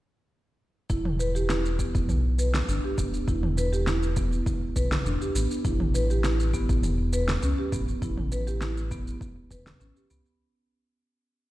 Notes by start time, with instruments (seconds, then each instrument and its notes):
0.90 analog synth bass E1, marimba E4, kick, shaker
1.05 mid tom
1.19 marimba B4, shaker
1.35 marimba G4, shaker
1.49 marimba E4, snare, shaker
1.65 shaker
1.79 marimba B3, kick, shaker
1.95 kick, shaker
2.09 analog synth bass B1, mid tom, shaker
2.38 marimba B4, shaker
2.54 snare, shaker
2.68 analog synth bass G1, marimba D4, shaker
2.84 marimba G4
2.98 analog synth bass E1, marimba B3, kick, shaker
3.14 shaker
3.28 analog synth bass E1, marimba E4, kick, shaker
3.43 mid tom
3.57 marimba B4, shaker
3.73 marimba G4, shaker
3.87 marimba E4, snare, shaker
4.03 shaker
4.17 marimba B3, kick, shaker
4.32 shaker
4.46 kick, shaker
4.76 analog synth bass B1, marimba B4, kick, shaker
4.92 snare, mid tom, shaker
5.06 analog synth bass E1, marimba D4, shaker
5.21 marimba G4, shaker
5.35 analog synth bass A1, marimba B3, shaker
5.51 shaker
5.65 analog synth bass A1, marimba E4, kick, shaker
5.80 mid tom
5.94 marimba B4, shaker
6.10 marimba G4, shaker
6.24 marimba E4, snare, shaker
6.40 shaker
6.54 marimba B3, kick, shaker
6.69 kick, shaker
6.83 analog synth bass E1, mid tom, shaker
7.13 marimba B4, shaker
7.28 snare, shaker
7.43 analog synth bass C#2, marimba C#4, shaker
7.58 marimba G4
7.72 analog synth bass A1, marimba B3, kick, shaker
7.88 shaker
8.02 analog synth bass A1, marimba E4, kick, shaker
8.17 mid tom
8.32 marimba B4, shaker
8.47 marimba G4, shaker
8.61 marimba E4, snare, shaker
8.77 shaker
8.91 marimba B3, kick, shaker
9.07 shaker
9.21 kick, shaker
9.51 analog synth bass E1, marimba B4, kick, shaker
9.67 snare, mid tom, shaker
9.80 analog synth bass A1, marimba C#4, shaker
9.96 marimba G4, shaker
10.10 analog synth bass C#2, marimba B3, shaker
10.26 shaker